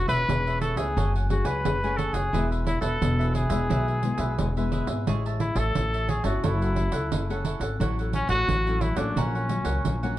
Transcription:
Already playing: nylon-string guitar E3 B3 C#4 G#4
0.08 upright bass E1, trumpet B4, cavaquinho B4 C#5 E5, pandeiro
0.28 upright bass E1, nylon-string guitar E3 B3 C#4 G#4, pandeiro
0.47 cavaquinho B4 C#5 E5, pandeiro
0.61 cavaquinho E4 B4 C#5 E5, trumpet A4, pandeiro
0.76 upright bass C#2, nylon-string guitar A3 C#4 G#4, trumpet G#4, cavaquinho B4 C#5 E5, pandeiro
0.97 upright bass F#1, nylon-string guitar F#3, cavaquinho A4 C#5 F#5 G#5, pandeiro
1.15 cavaquinho C#5 F#5 G#5, pandeiro
1.30 nylon-string guitar A3 C#4 G#4, trumpet F#4, muted cavaquinho stroke, pandeiro
1.45 upright bass C#2, trumpet B4, cavaquinho C#5 F#5 G#5, pandeiro
1.64 upright bass F#1, nylon-string guitar C#3 A3 C#4 G#4, pandeiro
1.83 nylon-string guitar A3 C#4 G#4, cavaquinho C#5 F#5 G#5, pandeiro
1.97 trumpet A4, cavaquinho A4 C#5 F#5 G#5, pandeiro
2.13 upright bass F#1, trumpet G#4, cavaquinho C#5 F#5 G#5, pandeiro
2.33 upright bass E1, nylon-string guitar E3 G#3 B3 E4, cavaquinho E4 G#4 B4 E5, pandeiro
2.51 cavaquinho G#4 B4 E5, pandeiro
2.66 trumpet E4, muted cavaquinho stroke, pandeiro
2.81 upright bass E1, trumpet A4, cavaquinho B4 E5, pandeiro
3.01 upright bass E1, nylon-string guitar B2 B3 E4, pandeiro
3.19 cavaquinho G#4 B4 E5, pandeiro
3.33 cavaquinho E4 G#4 B4 E5, trumpet G#4, pandeiro
3.49 upright bass E1, nylon-string guitar G#3 B3 E4, cavaquinho G#4 B4 E5, pandeiro
3.70 upright bass B1, cavaquinho E4 G#4 B4 E5, pandeiro
3.88 cavaquinho G#4 B4 E5, pandeiro
4.03 nylon-string guitar G#3 B3 E4, muted cavaquinho stroke, pandeiro
4.18 upright bass B1, cavaquinho G#4 B4 E5, pandeiro
4.38 upright bass E1, nylon-string guitar B2 G#3 B3 E4, pandeiro
4.57 nylon-string guitar G#3 B3 E4, cavaquinho G#4 B4 E5, pandeiro
4.72 cavaquinho E4 G#4 B4 E5, pandeiro
4.87 upright bass G#1, cavaquinho G#4 B4 E5, pandeiro
5.07 upright bass A1, nylon-string guitar A2 G#3 C#4 E4, cavaquinho G#4 C#5 E5 A5, pandeiro
5.26 cavaquinho C#5 E5 A5, pandeiro
5.40 trumpet E4, muted cavaquinho stroke, pandeiro
5.55 upright bass A1, trumpet A4, cavaquinho C#5 E5 A5, pandeiro
5.75 upright bass A1, nylon-string guitar E3 C#4 E4, pandeiro
5.93 cavaquinho C#5 E5 A5, pandeiro
6.09 cavaquinho G#4 C#5 E5 A5, trumpet G#4, pandeiro
6.24 upright bass G1, nylon-string guitar C#4 E4 A4, trumpet F#4, cavaquinho C#5 E5 A5, pandeiro
6.43 upright bass F#1, nylon-string guitar F#3, cavaquinho E4 A4 C#5 F#5, trumpet E4, pandeiro
6.61 cavaquinho A4 C#5 F#5, pandeiro
6.76 nylon-string guitar C#4 E4 A4, muted cavaquinho stroke, pandeiro
6.92 upright bass C#2, cavaquinho A4 C#5 F#5, pandeiro
7.12 upright bass F#1, nylon-string guitar C#3 C#4 E4 A4, pandeiro
7.30 nylon-string guitar C#4 E4 A4, cavaquinho A4 C#5 F#5, pandeiro
7.45 cavaquinho E4 A4 C#5 F#5, pandeiro
7.60 upright bass G#1, cavaquinho A4 C#5 F#5, pandeiro
7.80 upright bass A1, nylon-string guitar A2 F#3 C#4 E4, cavaquinho F#4 A4 C#5 F#5, pandeiro
7.99 cavaquinho A4 C#5 F#5, pandeiro
8.13 trumpet C#4, muted cavaquinho stroke, pandeiro
8.29 upright bass A1, trumpet F#4, cavaquinho A4 C#5 F#5, pandeiro
8.48 upright bass A1, nylon-string guitar E3 F#3 C#4 E4, pandeiro
8.67 nylon-string guitar F#3 C#4 E4, cavaquinho A4 C#5 F#5, pandeiro
8.81 trumpet E4, cavaquinho F#4 A4 C#5 F#5, pandeiro
8.97 upright bass A1, nylon-string guitar F#3 A#3 C#4, trumpet D4, cavaquinho A4 C#5 F#5, pandeiro
9.16 upright bass A#1, nylon-string guitar A#2, trumpet C#4, cavaquinho F#4 A#4 C#5 F#5, pandeiro
9.35 cavaquinho A#4 C#5 F#5, pandeiro
9.49 nylon-string guitar F#3 A#3 C#4, muted cavaquinho stroke, pandeiro
9.65 upright bass C#2, cavaquinho A#4 C#5 F#5, pandeiro
9.85 upright bass A#1, nylon-string guitar A#2 F#3 A#3 C#4, pandeiro
10.03 nylon-string guitar F#3 A#3 C#4, cavaquinho A#4 C#5 F#5, pandeiro

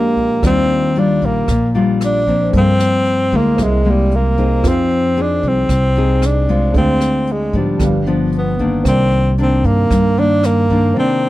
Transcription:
Already playing: upright bass A#1, nylon-string guitar A#2 G#3 D4 G4, tenor saxophone A#3, grand piano D4 G5
0.16 kick, closed hi-hat
0.42 upright bass D#2, nylon-string guitar D#3 G3 D4 F4, grand piano G4 D5 F5, kick, cross-stick, closed hi-hat
0.47 tenor saxophone C4
0.69 closed hi-hat
0.95 nylon-string guitar G3 D4 F4, tenor saxophone D4, closed hi-hat
1.22 upright bass A#1, kick, closed hi-hat
1.26 tenor saxophone A#3
1.48 upright bass A#1, nylon-string guitar A#2, kick, cross-stick, closed hi-hat
1.74 nylon-string guitar G3 D4 F4, closed hi-hat
2.01 tenor saxophone D4, cross-stick, closed hi-hat
2.27 nylon-string guitar F3 A#3 C4, kick, closed hi-hat
2.51 upright bass G2, nylon-string guitar G2, grand piano C4 A4, kick, closed hi-hat
2.55 tenor saxophone C4, grand piano A#4 F5
2.79 cross-stick, closed hi-hat
3.05 closed hi-hat
3.32 upright bass D2, nylon-string guitar G#3 A#3 E4, kick, closed hi-hat
3.37 tenor saxophone A#3
3.56 upright bass C2, nylon-string guitar C3, grand piano C4 G#4 A#4, kick, cross-stick, closed hi-hat
3.62 tenor saxophone G#3, grand piano E5
3.85 nylon-string guitar G#3 A#3 E4, closed hi-hat
3.91 tenor saxophone G3
4.11 closed hi-hat
4.16 tenor saxophone A#3
4.37 nylon-string guitar C4 D#4 G#4, kick, closed hi-hat
4.62 upright bass F2, nylon-string guitar F3, grand piano F4 G#4 C5, kick, cross-stick, closed hi-hat
4.68 tenor saxophone C4, grand piano F5
4.90 closed hi-hat
5.17 nylon-string guitar C4 D#4 G#4, closed hi-hat
5.22 tenor saxophone D4
5.43 upright bass C2, kick, closed hi-hat
5.49 tenor saxophone C4
5.69 upright bass C2, nylon-string guitar C3, kick, cross-stick, closed hi-hat
5.95 nylon-string guitar C4 D#4 G#4, closed hi-hat
6.22 tenor saxophone D4, cross-stick, closed hi-hat
6.48 nylon-string guitar G#3 C4 F4, kick, closed hi-hat
6.72 upright bass D2, nylon-string guitar D3, grand piano D4 G#4, kick, closed hi-hat
6.76 tenor saxophone C4, grand piano C5 F5
7.01 cross-stick, closed hi-hat
7.27 closed hi-hat
7.32 tenor saxophone G#3
7.53 upright bass G#2, nylon-string guitar F3 B3 D4, kick, closed hi-hat
7.58 tenor saxophone G3
7.78 upright bass G1, nylon-string guitar G2, grand piano D4 G4 B4, kick, cross-stick, closed hi-hat
7.84 grand piano F5
8.06 nylon-string guitar F3 B3 D4, closed hi-hat
8.32 closed hi-hat
8.38 tenor saxophone B3
8.59 nylon-string guitar D#3 A#3 D4, kick, closed hi-hat
8.84 upright bass C2, nylon-string guitar C3, grand piano C4 A#4, kick, cross-stick, closed hi-hat
8.88 tenor saxophone C4, grand piano D5
9.11 closed hi-hat
9.38 nylon-string guitar D#3 A#3 D4, closed hi-hat
9.42 tenor saxophone C4
9.64 upright bass G2, tenor saxophone A#3, kick, closed hi-hat
9.90 upright bass G2, nylon-string guitar G2, kick, cross-stick, closed hi-hat
10.17 nylon-string guitar D#3 A#3 D4, tenor saxophone D4, closed hi-hat
10.43 tenor saxophone A#3, cross-stick, closed hi-hat
10.69 nylon-string guitar D#3 A#3 D4, kick, closed hi-hat
10.94 nylon-string guitar C3 D#3 A#3 D4, grand piano C4
10.98 tenor saxophone C4, grand piano A#4 D5

